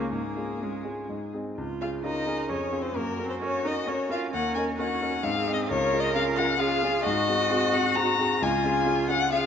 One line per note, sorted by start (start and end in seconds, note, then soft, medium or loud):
0.00 0.15 C#2 medium
0.00 0.11 A#3 medium
0.00 0.12 A#3 medium
0.00 0.15 C#4 soft
0.00 0.10 F4 soft
0.00 0.10 G#4 soft
0.00 0.13 G#4 medium
0.11 0.36 G#2 medium
0.11 0.60 A#3 medium
0.11 0.64 A#3 medium
0.11 1.32 G#4 medium
0.36 0.59 C#4 soft
0.36 0.59 F4 soft
0.36 0.59 G#4 soft
0.61 1.09 G#3 soft
0.61 1.10 G#3 medium
0.61 0.83 C#4 soft
0.61 0.83 F4 soft
0.61 0.84 G#4 medium
0.84 1.07 C#4 soft
0.84 1.07 F4 soft
0.84 1.07 G#4 soft
1.09 1.33 G#2 medium
1.33 1.55 C4 soft
1.33 1.55 D#4 soft
1.33 1.55 G#4 soft
1.58 1.80 C#2 medium
1.58 2.05 F4 medium
1.81 2.02 C#4 soft
1.81 1.89 F4 medium
1.81 2.02 F4 soft
1.81 2.03 G#4 soft
1.81 1.89 F5 medium
2.04 2.25 C#4 medium
2.04 2.51 D#4 medium
2.04 2.25 F4 medium
2.04 2.25 G#4 medium
2.04 2.52 A#4 medium
2.04 2.50 D#5 medium
2.26 2.47 C#4 soft
2.26 2.48 F4 soft
2.26 2.48 G#4 medium
2.49 2.72 F2 medium
2.49 2.80 C#4 medium
2.49 2.98 G#4 medium
2.49 2.83 C#5 medium
2.72 2.94 C#4 soft
2.72 2.93 F4 soft
2.72 2.94 G#4 medium
2.78 2.94 C4 medium
2.78 2.98 C5 medium
2.94 3.18 F#2 medium
2.94 3.24 A#3 medium
2.94 4.32 F#4 medium
2.94 3.27 A#4 medium
3.19 3.40 C#4 soft
3.19 3.40 A#4 medium
3.24 3.31 C4 medium
3.30 3.35 C5 medium
3.40 3.63 C#4 medium
3.40 3.63 A#4 medium
3.40 3.68 C#5 medium
3.64 3.86 C#4 medium
3.64 3.72 D#4 medium
3.64 3.86 A#4 medium
3.64 3.90 D#5 medium
3.86 3.94 C#4 medium
3.86 4.08 C#4 medium
3.86 4.08 A#4 medium
3.86 4.11 C#5 medium
4.10 4.31 C#4 medium
4.10 4.32 F4 medium
4.10 4.31 A#4 medium
4.10 4.19 F5 medium
4.32 4.56 D#2 medium
4.32 4.75 C#4 medium
4.32 4.77 A#4 medium
4.32 4.54 F#5 loud
4.55 4.76 C#4 medium
4.55 4.77 D#4 medium
4.55 4.77 A#4 medium
4.55 4.63 G#5 loud
4.77 4.99 C#4 medium
4.77 5.25 C#4 medium
4.77 4.99 D#4 medium
4.77 5.23 F#4 medium
4.77 4.99 A#4 medium
4.77 5.25 F#5 medium
5.01 5.22 C#4 medium
5.01 5.22 D#4 medium
5.01 5.23 A#4 medium
5.23 5.46 G#2 medium
5.23 5.70 C4 medium
5.23 5.70 G#4 medium
5.23 5.53 F5 loud
5.47 5.68 C4 medium
5.47 5.68 D#4 medium
5.47 5.68 G#4 medium
5.54 5.60 D#5 loud
5.69 5.92 C#2 medium
5.69 6.12 F4 medium
5.69 6.59 A#4 loud
5.69 6.01 C#5 loud
5.93 6.13 C#4 medium
5.93 6.13 F4 medium
5.93 6.13 G#4 medium
6.00 6.15 D#5 loud
6.13 6.35 C#4 medium
6.13 6.58 F4 medium
6.13 6.35 F4 medium
6.13 6.35 G#4 medium
6.13 6.23 F5 loud
6.35 6.58 C#4 medium
6.35 6.58 F4 medium
6.35 6.58 G#4 medium
6.35 6.60 F#5 loud
6.59 6.80 C#4 medium
6.59 7.05 F4 medium
6.59 6.80 F4 medium
6.59 7.05 G#4 loud
6.59 6.81 G#4 medium
6.59 7.04 F5 loud
6.83 7.03 C#4 medium
6.83 7.03 F4 medium
6.83 7.03 G#4 medium
7.03 7.27 G#2 loud
7.03 8.40 F#4 loud
7.03 8.40 F#4 medium
7.03 7.74 D#5 loud
7.28 7.48 C4 medium
7.28 7.48 F#4 medium
7.28 7.49 G#4 medium
7.50 7.71 C4 medium
7.50 7.71 F#4 medium
7.50 7.71 G#4 medium
7.73 7.94 C4 medium
7.73 7.94 F#4 medium
7.73 7.94 G#4 medium
7.73 7.97 F#5 loud
7.96 8.17 C4 medium
7.96 8.16 F#4 medium
7.96 8.17 G#4 medium
7.96 8.44 A#5 loud
8.19 8.39 C4 medium
8.19 8.39 F#4 medium
8.19 8.40 G#4 medium
8.41 8.63 C#2 loud
8.41 9.30 F4 medium
8.41 9.30 F4 loud
8.41 9.09 G#5 loud
8.64 8.84 C#4 medium
8.64 8.84 F4 medium
8.64 8.85 G#4 medium
8.85 9.06 C#4 medium
8.85 9.06 F4 medium
8.85 9.07 G#4 medium
9.09 9.29 C#4 medium
9.09 9.30 F4 medium
9.09 9.30 G#4 medium
9.09 9.32 F#5 loud
9.31 9.46 C#4 medium
9.31 9.46 F4 medium
9.31 9.46 G#4 loud
9.31 9.46 G#4 medium
9.31 9.46 F5 loud